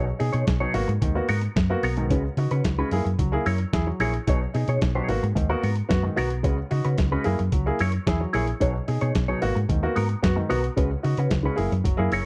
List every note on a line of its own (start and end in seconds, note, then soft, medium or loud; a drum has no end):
0.00 0.11 B1 loud
0.06 muted clean electric guitar stroke soft
0.19 0.29 B2 medium
0.19 0.33 D#4 medium
0.19 0.33 G#4 medium
0.19 muted clean electric guitar stroke soft
0.19 open hi-hat medium
0.33 0.43 B2 medium
0.33 0.45 D#4 soft
0.33 0.45 G#4 medium
0.33 0.44 C#5 medium
0.33 closed hi-hat medium
0.47 0.65 B1 medium
0.47 0.53 D#4 soft
0.47 0.53 G#4 soft
0.47 muted clean electric guitar stroke soft
0.47 kick medium
0.47 snare medium
0.47 closed hi-hat medium
0.60 0.74 B2 medium
0.60 0.74 F#3 medium
0.60 0.74 D#4 medium
0.60 0.75 G#4 medium
0.60 0.75 C#5 medium
0.74 0.83 G#1 medium
0.74 0.87 A#3 medium
0.74 0.87 B3 medium
0.74 0.87 F#4 medium
0.74 muted clean electric guitar stroke soft
0.74 open hi-hat medium
0.88 0.97 G#2 loud
0.88 muted clean electric guitar stroke soft
0.88 closed hi-hat soft
1.02 1.19 D#2 medium
1.02 1.15 G#2 medium
1.02 1.15 D#3 medium
1.02 kick loud
1.02 closed hi-hat medium
1.15 1.28 A#3 medium
1.15 1.28 B3 medium
1.15 1.28 F#4 medium
1.15 muted clean electric guitar stroke soft
1.29 1.47 G#2 loud
1.29 1.43 B3 medium
1.29 1.34 B3 soft
1.29 1.34 F#4 soft
1.29 1.43 F#4 medium
1.29 1.42 A#4 loud
1.29 open hi-hat medium
1.41 muted clean electric guitar stroke soft
1.41 closed hi-hat soft
1.56 1.74 F#2 loud
1.56 muted clean electric guitar stroke soft
1.56 kick loud
1.56 snare loud
1.56 closed hi-hat medium
1.70 1.83 A#3 medium
1.70 1.83 B3 medium
1.70 1.83 F#4 medium
1.70 muted clean electric guitar stroke soft
1.83 2.10 B1 medium
1.83 1.97 B3 medium
1.83 1.97 F#4 medium
1.83 1.96 A#4 medium
1.83 snare soft
1.83 open hi-hat medium
1.97 2.10 G#2 medium
1.97 2.10 D#3 medium
1.97 2.09 B3 medium
1.97 2.08 F#4 medium
1.97 2.08 A#4 medium
1.97 closed hi-hat soft
2.10 2.28 C#2 loud
2.10 2.24 C#3 medium
2.10 2.24 G#3 medium
2.10 2.24 C#4 medium
2.10 2.24 F#4 medium
2.10 2.23 B4 medium
2.10 kick loud
2.10 closed hi-hat medium
2.24 muted clean electric guitar stroke soft
2.37 2.46 C#3 medium
2.37 2.51 D#4 soft
2.37 2.51 F#4 medium
2.37 muted clean electric guitar stroke soft
2.37 open hi-hat medium
2.51 2.60 C#3 medium
2.51 2.63 C#4 soft
2.51 2.63 F#4 medium
2.51 2.62 B4 medium
2.51 closed hi-hat medium
2.64 2.82 C#2 medium
2.64 2.70 D#4 soft
2.64 2.70 F#4 soft
2.64 kick loud
2.64 snare loud
2.64 closed hi-hat medium
2.78 2.91 C#3 medium
2.78 2.91 G#3 medium
2.78 2.92 C#4 medium
2.78 2.92 F#4 medium
2.78 2.93 B4 medium
2.91 3.00 F#2 medium
2.91 3.05 A#3 medium
2.91 3.05 E4 medium
2.91 3.05 G#4 medium
2.91 muted clean electric guitar stroke soft
2.91 open hi-hat medium
3.05 3.14 F#2 medium
3.05 muted clean electric guitar stroke soft
3.05 closed hi-hat soft
3.19 3.36 C#2 medium
3.19 3.32 F#3 medium
3.19 kick loud
3.19 closed hi-hat medium
3.32 3.45 A#3 medium
3.32 3.45 E4 medium
3.32 3.45 G#4 medium
3.32 muted clean electric guitar stroke soft
3.46 3.64 F#2 loud
3.46 3.60 E4 medium
3.46 3.52 E4 soft
3.46 3.52 G#4 soft
3.46 3.60 A#4 medium
3.46 3.59 C#5 medium
3.46 open hi-hat medium
3.58 muted clean electric guitar stroke soft
3.58 closed hi-hat soft
3.73 3.91 E2 medium
3.73 3.86 E4 medium
3.73 3.87 G#4 medium
3.73 kick loud
3.73 snare loud
3.73 closed hi-hat medium
3.87 4.00 F#3 medium
3.87 muted clean electric guitar stroke soft
4.00 4.17 A#1 medium
4.00 4.13 E4 medium
4.00 4.14 E4 medium
4.00 4.14 G#4 medium
4.00 4.14 A#4 medium
4.00 4.13 C#5 medium
4.00 snare soft
4.00 open hi-hat medium
4.14 muted clean electric guitar stroke medium
4.14 closed hi-hat soft
4.27 4.45 B1 loud
4.27 4.40 B2 medium
4.27 4.40 F#3 medium
4.27 4.42 D#4 medium
4.27 4.41 G#4 medium
4.27 4.40 C#5 medium
4.27 kick loud
4.27 closed hi-hat medium
4.41 muted clean electric guitar stroke soft
4.54 4.63 B2 medium
4.54 4.67 D#4 medium
4.54 4.68 G#4 medium
4.54 muted clean electric guitar stroke soft
4.54 open hi-hat medium
4.68 4.77 B2 medium
4.68 4.80 D#4 soft
4.68 4.80 G#4 medium
4.68 4.79 C#5 medium
4.68 closed hi-hat medium
4.81 4.99 B1 loud
4.81 4.87 D#4 soft
4.81 4.87 G#4 soft
4.81 muted clean electric guitar stroke soft
4.81 kick medium
4.81 snare loud
4.81 closed hi-hat soft
4.95 5.08 B2 medium
4.95 5.08 F#3 medium
4.95 5.09 D#4 medium
4.95 5.09 G#4 medium
4.95 5.10 C#5 medium
5.08 5.17 G#1 medium
5.08 5.21 A#3 medium
5.08 5.22 B3 medium
5.08 5.22 F#4 medium
5.08 open hi-hat medium
5.23 5.32 G#2 loud
5.23 muted clean electric guitar stroke soft
5.23 closed hi-hat soft
5.35 5.54 D#2 loud
5.35 5.49 G#2 medium
5.35 5.49 D#3 medium
5.35 muted clean electric guitar stroke soft
5.35 kick loud
5.35 closed hi-hat medium
5.49 5.62 A#3 medium
5.49 5.61 B3 medium
5.49 5.62 B3 medium
5.49 5.62 F#4 medium
5.49 5.63 F#4 medium
5.49 5.63 A#4 medium
5.63 5.81 G#2 medium
5.63 5.68 B3 soft
5.63 5.74 B3 medium
5.63 5.69 F#4 soft
5.63 5.74 F#4 medium
5.63 5.75 A#4 medium
5.63 open hi-hat medium
5.76 muted clean electric guitar stroke medium
5.76 closed hi-hat soft
5.89 6.08 F#2 medium
5.89 6.02 B3 medium
5.89 6.03 F#4 medium
5.89 muted clean electric guitar stroke soft
5.89 kick loud
5.89 snare loud
5.89 closed hi-hat medium
6.03 6.17 G#2 medium
6.03 6.17 D#3 medium
6.03 muted clean electric guitar stroke soft
6.16 6.44 B1 medium
6.16 6.30 B3 medium
6.16 6.31 B3 medium
6.16 6.30 F#4 medium
6.16 6.29 A#4 medium
6.16 snare soft
6.16 open hi-hat medium
6.30 muted clean electric guitar stroke soft
6.30 closed hi-hat soft
6.43 6.62 C#2 loud
6.43 6.57 C#3 medium
6.43 6.57 G#3 medium
6.43 6.58 C#4 medium
6.43 6.58 F#4 medium
6.43 6.57 B4 medium
6.43 kick loud
6.43 closed hi-hat medium
6.58 muted clean electric guitar stroke soft
6.71 6.80 C#3 medium
6.71 6.84 D#4 medium
6.71 6.84 F#4 medium
6.71 muted clean electric guitar stroke soft
6.71 open hi-hat medium
6.84 6.94 C#3 medium
6.84 6.97 C#4 soft
6.84 6.96 F#4 medium
6.84 6.96 B4 medium
6.84 closed hi-hat medium
6.98 7.16 C#2 loud
6.98 7.04 D#4 soft
6.98 7.04 F#4 soft
6.98 muted clean electric guitar stroke soft
6.98 kick medium
6.98 snare medium
6.98 closed hi-hat medium
7.12 7.25 C#3 medium
7.12 7.25 G#3 medium
7.12 7.26 C#4 medium
7.12 7.26 F#4 medium
7.12 7.26 B4 medium
7.24 7.35 F#2 medium
7.24 7.38 A#3 medium
7.24 7.38 E4 medium
7.24 7.38 G#4 medium
7.24 muted clean electric guitar stroke soft
7.24 open hi-hat medium
7.39 7.48 F#2 loud
7.39 muted clean electric guitar stroke soft
7.39 closed hi-hat soft
7.52 7.70 C#2 loud
7.52 7.66 F#3 medium
7.52 kick loud
7.52 closed hi-hat medium
7.66 7.79 A#3 medium
7.66 7.80 E4 medium
7.66 7.79 G#4 medium
7.66 muted clean electric guitar stroke soft
7.79 7.98 F#2 medium
7.79 7.94 E4 medium
7.79 7.86 E4 soft
7.79 7.86 G#4 soft
7.79 7.94 A#4 medium
7.79 7.93 C#5 medium
7.79 open hi-hat medium
7.92 muted clean electric guitar stroke medium
7.92 closed hi-hat soft
8.06 8.25 E2 medium
8.06 8.20 E4 medium
8.06 8.20 G#4 medium
8.06 muted clean electric guitar stroke soft
8.06 kick loud
8.06 snare loud
8.06 closed hi-hat medium
8.20 8.34 F#3 medium
8.20 muted clean electric guitar stroke soft
8.33 8.52 A#1 medium
8.33 8.48 E4 medium
8.33 8.47 E4 medium
8.33 8.47 G#4 medium
8.33 8.47 A#4 medium
8.33 8.46 C#5 medium
8.33 snare soft
8.33 open hi-hat medium
8.47 muted clean electric guitar stroke soft
8.47 closed hi-hat soft
8.60 8.79 B1 loud
8.60 8.74 B2 medium
8.60 8.74 F#3 medium
8.60 8.75 D#4 medium
8.60 8.74 G#4 medium
8.60 8.73 C#5 medium
8.60 kick loud
8.60 closed hi-hat medium
8.74 muted clean electric guitar stroke soft
8.87 8.97 B2 medium
8.87 9.01 D#4 medium
8.87 9.01 G#4 medium
8.87 muted clean electric guitar stroke soft
8.87 open hi-hat medium
9.01 9.11 B2 loud
9.01 9.13 D#4 medium
9.01 9.13 G#4 medium
9.01 9.12 C#5 medium
9.01 closed hi-hat soft
9.15 9.33 B1 medium
9.15 9.20 D#4 soft
9.15 9.20 G#4 soft
9.15 muted clean electric guitar stroke soft
9.15 kick medium
9.15 snare loud
9.15 closed hi-hat medium
9.28 9.42 B2 medium
9.28 9.42 F#3 medium
9.28 9.41 D#4 medium
9.28 9.42 G#4 medium
9.28 9.42 C#5 medium
9.42 9.51 G#1 medium
9.42 9.55 A#3 medium
9.42 9.55 B3 medium
9.42 9.55 F#4 medium
9.42 muted clean electric guitar stroke soft
9.42 open hi-hat medium
9.55 9.65 G#2 loud
9.55 muted clean electric guitar stroke soft
9.55 closed hi-hat soft
9.69 9.87 D#2 medium
9.69 9.82 G#2 soft
9.69 9.82 D#3 soft
9.69 kick loud
9.69 closed hi-hat medium
9.83 9.96 A#3 medium
9.83 9.95 B3 medium
9.83 9.95 F#4 medium
9.83 muted clean electric guitar stroke soft
9.96 10.14 G#2 medium
9.96 10.10 B3 medium
9.96 10.02 B3 soft
9.96 10.02 F#4 soft
9.96 10.09 F#4 medium
9.96 10.08 A#4 loud
9.96 open hi-hat medium
10.09 muted clean electric guitar stroke soft
10.09 closed hi-hat soft
10.23 10.41 F#2 medium
10.23 10.36 B3 medium
10.23 10.36 F#4 medium
10.23 muted clean electric guitar stroke soft
10.23 kick loud
10.23 snare loud
10.23 closed hi-hat medium
10.36 10.50 G#2 medium
10.36 10.50 D#3 medium
10.36 muted clean electric guitar stroke medium
10.49 10.68 B1 medium
10.49 10.63 B3 medium
10.49 10.64 B3 medium
10.49 10.63 F#4 loud
10.49 10.63 F#4 medium
10.49 10.62 A#4 loud
10.49 snare soft
10.49 open hi-hat medium
10.63 muted clean electric guitar stroke medium
10.63 closed hi-hat soft
10.76 10.95 C#2 medium
10.76 10.90 C#3 medium
10.76 10.90 G#3 medium
10.76 10.91 C#4 medium
10.76 10.91 F#4 medium
10.76 10.90 B4 medium
10.76 kick loud
10.76 closed hi-hat medium
10.91 muted clean electric guitar stroke medium
11.03 11.13 C#3 medium
11.03 11.16 D#4 medium
11.03 11.17 F#4 medium
11.03 muted clean electric guitar stroke soft
11.03 open hi-hat medium
11.17 11.26 C#3 medium
11.17 11.30 C#4 soft
11.17 11.29 F#4 medium
11.17 11.29 B4 medium
11.17 closed hi-hat medium
11.30 11.48 C#2 medium
11.30 11.36 D#4 soft
11.30 11.36 F#4 soft
11.30 muted clean electric guitar stroke soft
11.30 kick loud
11.30 snare loud
11.30 closed hi-hat medium
11.43 11.57 C#3 medium
11.43 11.57 G#3 medium
11.43 11.59 C#4 medium
11.43 11.59 F#4 medium
11.43 11.59 B4 medium
11.56 11.67 F#1 medium
11.56 11.70 A#3 medium
11.56 11.70 E4 medium
11.56 11.70 G#4 medium
11.56 open hi-hat medium
11.72 11.81 F#2 medium
11.72 muted clean electric guitar stroke soft
11.72 closed hi-hat soft
11.84 11.94 F#1 medium
11.84 11.97 F#3 medium
11.84 kick loud
11.84 closed hi-hat medium
11.97 12.07 F#2 medium
11.97 12.11 A#3 medium
11.97 12.10 E4 medium
11.97 12.09 G#4 medium
11.97 muted clean electric guitar stroke soft
12.11 12.21 F#1 loud
12.11 12.17 E4 soft
12.11 12.26 E4 medium
12.11 12.17 G#4 soft
12.11 12.25 A#4 medium
12.11 12.25 C#5 medium
12.11 open hi-hat medium